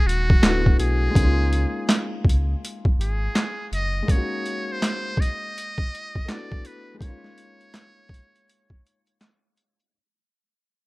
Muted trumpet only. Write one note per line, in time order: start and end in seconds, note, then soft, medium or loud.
0.07 0.79 F#4 loud
0.80 2.21 G#4 loud
3.01 3.68 G#4 medium
3.74 4.13 D#5 loud
4.11 4.73 C#5 loud
4.72 5.22 C5 loud
5.20 6.32 D#5 loud
6.31 6.68 D5 medium
6.66 6.97 B4 medium
6.99 7.05 C5 medium
7.04 9.22 C#5 loud